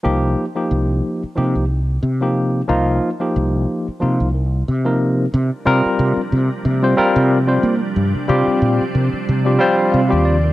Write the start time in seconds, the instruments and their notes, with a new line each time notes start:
0.03 fretless electric bass C2, tine electric piano F3 A#3 D#4 G4
0.55 tine electric piano F3 A#3 D#4 G4
0.71 fretless electric bass C2
1.23 muted fretless electric bass stroke
1.36 fretless electric bass C3, tine electric piano F3 A#3 D#4 G4
1.55 fretless electric bass C2
1.69 tine electric piano D#4 G4
2.03 fretless electric bass C3
2.21 tine electric piano F3 A#3 D#4 G4
2.68 fretless electric bass C2, tine electric piano F3 A#3 D#4 F4
3.20 tine electric piano F3 A#3 D#4 G4
3.36 fretless electric bass C2
3.88 muted fretless electric bass stroke
4.00 fretless electric bass C3, tine electric piano F3 A#3 D#4 F4
4.20 fretless electric bass C2
4.33 tine electric piano D#4 A#4
4.68 fretless electric bass C3
4.85 tine electric piano F3 A#3 D#4 A#4
5.34 fretless electric bass C3, ambient pad C3 F3 G3 A#3 D4
5.66 fretless electric bass C3, tine electric piano G3 C4 F4 A#4
5.86 muted fretless electric bass stroke
5.99 fretless electric bass C3
6.17 muted fretless electric bass stroke
6.32 fretless electric bass C3, tine electric piano F4 C5
6.65 fretless electric bass C3
6.82 tine electric piano G3 C4 F4 C5
6.97 tine electric piano G3 C4 F4 A#4, muted fretless electric bass stroke
7.16 fretless electric bass C3
7.47 tine electric piano G3 C4 F4 C5
7.63 fretless electric bass A#3
7.80 tine electric piano F4 G4
7.96 fretless electric bass G2, ambient pad C4
8.15 muted fretless electric bass stroke
8.28 fretless electric bass C3, tine electric piano G3 C4 F4 G4
8.47 muted fretless electric bass stroke
8.62 fretless electric bass A#2
8.81 muted fretless electric bass stroke
8.94 fretless electric bass C3, tine electric piano F4 A#4
9.13 muted fretless electric bass stroke
9.29 fretless electric bass C3
9.45 tine electric piano G3 C4 F4 G4
9.59 tine electric piano G3 C4 F4 C5 G5
9.92 fretless electric bass C3, tine electric piano F5
10.09 fretless electric bass D#2, tine electric piano G3 C4 F4 G4
10.25 tine electric piano D5
10.43 tine electric piano F4 A#4